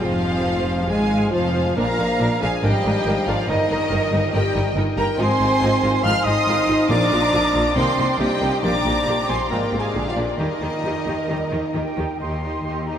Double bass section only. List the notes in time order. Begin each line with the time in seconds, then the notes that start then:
0.01 F1
0.88 G#1
1.32 F1
1.77 A#1
1.99 A#1
2.21 A#1
2.42 A#1
2.64 G#1
2.85 G#1
3.06 G#1
3.27 G#1
3.48 G1
3.70 G1
3.91 G1
4.13 G1
4.34 G1
4.55 G1
4.76 G1
4.97 G1
5.18 G#1
5.40 G#1
5.61 G#1
5.83 G#1
6.04 G#1
6.25 G#1
6.47 G#1
6.68 G#1
6.89 A#1
7.11 A#1
7.33 A#1
7.54 A#1
7.76 C2
7.98 C2
8.20 C2
8.41 C2
8.64 A#1
8.85 A#1
9.07 A#1
9.28 A#1
9.50 G#1
9.72 G#1
9.94 A#1
10.16 A#1
10.38 D#2
10.61 D#2
10.84 D#2
11.07 D#2
11.29 D#2
11.52 D#2
11.74 D#2
11.97 D#2
12.20 D#2
12.65 D#2